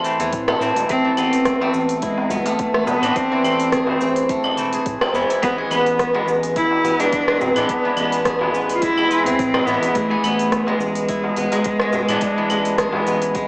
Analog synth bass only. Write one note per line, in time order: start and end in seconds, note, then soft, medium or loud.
0.20 0.33 E2 loud
0.33 0.55 A2 medium
0.61 0.73 A2 loud
0.76 0.86 E1 loud
0.90 1.12 A1 loud
1.17 1.69 A1 loud
1.74 2.26 A1 medium
2.30 2.42 C2 loud
2.87 2.99 E1 loud
3.02 3.12 A2 medium
3.43 3.95 A1 medium
4.01 4.59 A1 medium
4.57 4.79 E1 medium
4.86 4.98 A2 medium
5.14 5.26 E2 medium
5.43 5.65 A1 loud
5.71 6.22 A1 loud
6.27 6.79 A1 loud
6.84 6.95 A1 loud
7.40 7.52 E1 medium
7.56 7.66 A2 medium
7.97 8.48 A1 medium
8.53 9.05 A1 medium
9.25 9.39 E2 medium
9.39 9.61 A2 medium
9.67 9.79 A2 loud
9.82 9.92 A1 loud
9.96 10.17 A1 loud
10.23 10.75 A1 medium
10.80 11.31 A1 medium
11.37 11.49 A1 loud
11.93 12.05 E1 medium
12.09 12.18 A2 medium
12.50 13.01 A1 loud
13.07 13.48 A1 medium